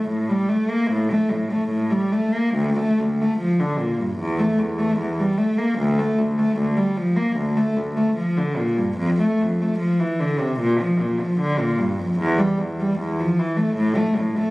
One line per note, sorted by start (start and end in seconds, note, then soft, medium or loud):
0.08 0.28 A2 soft
0.29 0.49 G3 soft
0.49 0.69 A3 soft
0.71 0.90 A#3 medium
0.91 1.10 A2 soft
1.12 1.31 A3 medium
1.32 1.51 A2 soft
1.51 1.71 A3 soft
1.69 1.90 A2 medium
1.91 2.11 G3 medium
2.12 2.33 A3 soft
2.34 2.55 A#3 soft
2.55 2.76 D2 medium
2.80 2.99 A3 medium
3.00 3.19 D2 soft
3.22 3.40 A3 medium
3.39 3.58 F3 medium
3.60 3.79 D3 medium
3.79 3.99 A#2 soft
3.99 4.18 G2 soft
4.19 4.38 E2 medium
4.39 4.59 A3 medium
4.59 4.78 E2 soft
4.79 4.98 A3 medium
4.98 5.17 E2 medium
5.20 5.39 G3 soft
5.38 5.58 A3 medium
5.58 5.78 A#3 medium
5.79 5.98 D2 medium
5.99 6.18 A3 medium
6.19 6.38 D2 soft
6.39 6.58 A3 medium
6.58 6.77 D2 medium
6.77 6.97 G3 medium
6.97 7.16 F3 medium
7.16 7.36 A#3 medium
7.37 7.56 D2 medium
7.57 7.76 A3 medium
7.77 7.96 D2 soft
7.97 8.15 A3 medium
8.16 8.34 F3 medium
8.37 8.56 D3 medium
8.58 8.76 A#2 medium
8.77 8.97 G2 medium
8.97 9.17 F2 medium
9.21 9.40 A3 medium
9.41 9.60 F2 medium
9.62 9.80 A3 medium
9.79 9.98 F3 medium
10.00 10.19 E3 medium
10.20 10.39 D3 medium
10.40 10.58 C3 medium
10.60 10.78 A#2 medium
10.81 10.99 F3 medium
11.00 11.18 A#2 medium
11.21 11.38 F3 medium
11.40 11.58 D3 medium
11.59 11.78 A#2 medium
11.78 11.97 G2 medium
11.98 12.17 F2 medium
12.19 12.37 E2 medium
12.38 12.57 G3 medium
12.58 12.77 E2 medium
12.80 12.98 G3 medium
12.99 13.17 E2 medium
13.20 13.38 F3 medium
13.39 13.58 E3 medium
13.57 13.77 A3 medium
13.77 13.96 A2 medium
13.96 14.16 A3 medium
14.18 14.37 A2 medium
14.37 14.50 A3 medium